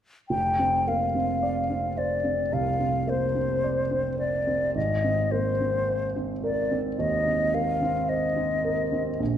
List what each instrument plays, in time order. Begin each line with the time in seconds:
0.29 grand piano F1, flute G5
0.59 grand piano C4
0.88 grand piano A#3, flute F5
1.15 grand piano C4
1.43 grand piano D5
1.70 grand piano C4
1.98 grand piano C5, flute D5
2.24 grand piano C4
2.52 grand piano C2, flute F5
2.80 grand piano C4
3.07 grand piano A#3, flute C5
3.36 grand piano C4
3.64 grand piano D5
3.91 grand piano C4
4.19 grand piano C5, flute D5
4.47 grand piano C4
4.75 grand piano G#1, flute D#5
5.04 grand piano C4
5.31 grand piano A#3, flute C5
5.61 grand piano C4
5.89 grand piano C5
6.16 grand piano C4
6.44 grand piano A#4, flute D5
6.71 grand piano C4
6.98 grand piano D#2, flute D#5
7.27 grand piano C4
7.54 grand piano A#3, flute F5
7.82 grand piano C4
8.09 grand piano C5, flute D#5
8.36 grand piano C4
8.65 grand piano A#4
8.92 grand piano C4
9.20 grand piano A#1